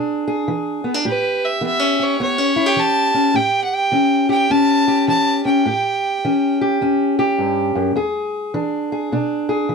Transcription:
Already playing: B2 D4 G#4
0.28 G#4
0.48 E3
0.84 B3
0.94 D4
1.05 A2 G4 B4
1.45 E5
1.61 E3 B3
1.66 E5
1.79 C#4
2.00 G4 C#5
2.20 E2 B3 C#5
2.38 C#4
2.56 E4
2.66 G4
2.76 E3 A5
3.14 C#4
3.34 A2 G4 G5
3.64 F#5
3.73 G5
3.92 E3 C#4
4.29 G4 G5
4.50 E2 C#4 A5
4.88 G4
5.08 E3 A5
5.45 C#4 G5
5.66 A2 G4
6.25 E3 C#4
6.61 G4
6.81 E2 C#4
7.19 G4
7.38 G2
7.75 F#2
7.96 E2 G#4
8.54 E3 D4
8.92 G#4
9.12 B2 D4
9.49 G#4
9.69 E3

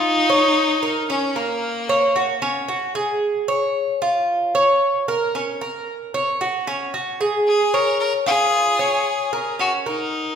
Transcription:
Already playing: D#4 F4
0.30 C#5
0.83 A#4
1.09 C#4
1.36 A#3 A#4
1.89 C#5
2.16 F#4
2.42 C#4
2.68 F#4
2.95 G#4
3.48 C#5
4.02 F4
4.55 C#5
5.08 A#4
5.35 C#4
5.61 A#4
6.14 C#5
6.41 F#4
6.67 C#4
6.94 F#4
7.21 G#4
7.47 G#4
7.74 A#4 C#5
8.00 A#4
8.26 F4 G#4
8.79 C#5
9.33 A#4
9.59 C#4 F#4
9.86 D#4 A#4

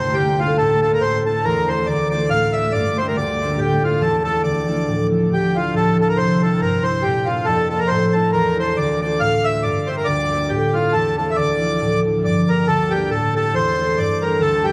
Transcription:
Already playing: D2 G2 D3 D4 C5
0.00 C4 E4 G4
0.14 D3 G4
0.39 D4 F4 A4
0.58 A2 A4
0.81 D4 F4 A4
0.93 A#4
1.01 A2 C5
1.25 A3 C4 E4 A4
1.45 E2 A#4
1.68 A3 C4 E4 C5
1.87 D2 D3 D5
2.10 A3 D4 F4 D5
2.30 A2 F5
2.53 A3 D4 F4 E5
2.72 G2 D5
2.96 A#3 D4 G4 C5
3.08 A#4
3.15 D2 D5
3.39 A#3 D4 G4
3.57 A2 G4
3.81 A3 C4 E4 F4
4.00 E2 A4
4.24 A3 C4 E4 A4
4.43 D2 D5
4.67 F3 D4 E4
4.88 A2
5.11 F3 D4 E4
5.30 D2 G4
5.54 F3 D4 E4 F4
5.73 A2 A4
5.98 F3 D4 E4 A4
6.09 A#4
6.17 C2 C5
6.40 G3 C4 A4
6.45 E4
6.61 G2 A#4
6.83 G3 C4 E4 C5
7.02 A#2 G4
7.25 A#3 D4 F4
7.30 F4
7.45 F2 A4
7.70 A#3 D4 F4 A4
7.79 A#4
7.88 A2 C5
8.13 A3 C4 E4 A4
8.32 E2 A#4
8.58 A3 C4 E4 C5
8.77 D2 D5
9.00 A3 D4 D5
9.06 F4
9.20 A2 F5
9.43 A3 D4 E5
9.49 F4
9.63 G2 D5
9.87 A#3 D4 G4 C5
9.97 A#4
10.05 D2 D5
10.32 A#3 D4 G4
10.49 A2 G4
10.74 A3 C4 E4 F4
10.93 E2 A4
11.18 A3 C4 E4 A4
11.30 E5
11.36 D2 D5
11.61 F3 D4 E4
11.81 A2
12.05 F3 D4 E4
12.24 G2 D5
12.49 G3 A#3 D4 A#4
12.68 D2 A4
12.91 G3 A#3 D4 G4
13.10 A2 A4
13.35 A3 C4 E4 A4
13.53 E2 C5
13.78 A3 C4 E4
13.97 G2 D5
14.21 G3 A3 D4 A#4
14.40 D2 A4
14.64 G3 A3 D4 G4

